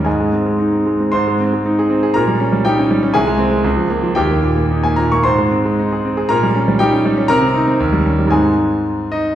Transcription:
X:1
M:2/4
L:1/16
Q:1/4=115
K:Ab
V:1 name="Grand piano"
[Aea]4 z4 | [cc']8 | [Bb]4 [Gg]4 | [Aa]8 |
[Gg]4 z a b d' | [cc']8 | [Bb]4 [Gg]4 | [Bb]8 |
[Aa]4 z2 [Ee]2 |]
V:2 name="Grand piano"
A,, A, C A, E C A, C | A,, A, C A, E A C A | B,, G, D G, E D G, D | C,, A, C A, D,, F, B, F, |
E,, B, B,, B, E B, B,, B, | A,, A, C A, E A C A | B,, G, D G, E D G, D | C, C E C E,, G, D G, |
[A,,A,CE]8 |]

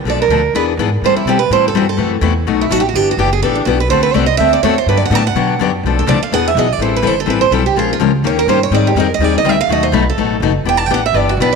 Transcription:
X:1
M:4/4
L:1/8
Q:"Swing" 1/4=249
K:Ador
V:1 name="Steel-string acoustic guitar"
d _B3 =B z3 | c E G B c A F A- | A z4 E (3F G F | G F G _A =A D F B |
c B d _e =e d ^c =c | (3B d f a f3 z2 | z A d =f ^f e _e d | c B c A B c A G |
_A =F z2 _d _B c d | d G _B _e d e =e =f | ^d c B A3 z2 | (3g a g f e d F B z |]
V:2 name="Steel-string acoustic guitar"
[B,,=F,A,DA] z [B,,F,A,DA] z [E,B,D^G] z [E,B,DG] z | [E,G,CEA] z [E,G,CEA] z [E,G,CEA] z [E,G,CEA] z | [C,E,A,EF] z [C,E,A,EF] z [B,,F,A,^DF] z [B,,F,A,DF] z | [E,B,DG] z [E,B,DG] z [E,B,DG] z [E,B,DG] z |
[D,A,CFA] z [D,A,CFA] z [D,A,CFA] z [D,A,CFA] z | [D,F,B,DG] z [D,F,B,DG] z [D,F,B,DG] z [D,F,B,DG] z | [B,,=F,A,DA] z [B,,F,A,DA] z [E,B,D^G] z [E,B,DG] z | [E,G,CEA] z [E,G,CEA] z [E,G,CEA] z [E,G,CEA] z |
[=F,_A,_D=F_B] z [F,A,DFB] z [_E,_B,DGB] z [E,B,DGB] z | [_E,G,C_E_A] z [E,G,CEA] z [E,G,CEA] z [E,G,CEA] z | [B,,F,A,^DF] z [B,,F,A,DF] z [B,,F,A,DF] z [B,,F,A,DF] z | [E,B,DG] z [E,B,DG] z [E,B,DG] z [E,B,DG] z |]
V:3 name="Upright bass" clef=bass
B,,,2 D,,2 E,,2 ^G,,2 | A,, z B,,2 A,,2 G,,2 | F,,2 E,,2 B,,,2 A,,,2 | G,,,2 F,,,2 A,,,2 B,,,2 |
D,,2 C,,2 D,,2 E,,2 | G,,2 A,,2 B,,2 F,,2 | B,,,2 C,, z E,,2 B,,,2 | A,,,2 G,,,2 A,,,2 B,,,2 |
_B,,,2 _D,,2 _E,,2 G,,2 | _A,,2 =F,,2 _E,,2 D,,2 | ^D,,2 B,,,2 A,,,2 F,,,2 | E,,,2 A,,,2 G,,,2 B,,,2 |]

